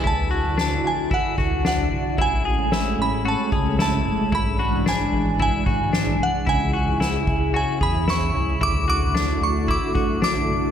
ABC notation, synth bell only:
X:1
M:4/4
L:1/16
Q:1/4=112
K:Dlyd
V:1 name="Synth bell"
a4 a2 g2 f4 f4 | g6 b2 a4 a4 | b4 g4 g6 f2 | g8 g2 b2 c'4 |
d'2 d'4 c'2 d'4 d'3 z |]